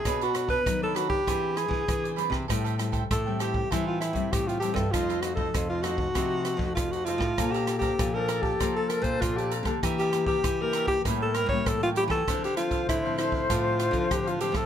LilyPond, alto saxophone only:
\new Staff \with { instrumentName = "Alto saxophone" } { \time 4/4 \key a \phrygian \tempo 4 = 98 aes'16 fis'8 b'8 a'16 fis'16 g'8. gis'4 r8 | r4 a'8 g'8 e'16 f'16 e'8 g'16 f'16 g'16 a'16 | f'8 ges'16 a'8 f'16 ges'4. f'16 ges'16 f'8~ | f'16 g'8 g'8 bes'8 g'8 a'16 bes'16 c''16 f'16 g'16 r8 |
r16 g'8 g'8 bes'8 g'8 a'16 bes'16 cis''16 a'16 f'16 g'16 a'16~ | a'16 g'16 f'8 e'8 e'8 f'4 g'16 f'16 g'16 a'16 | }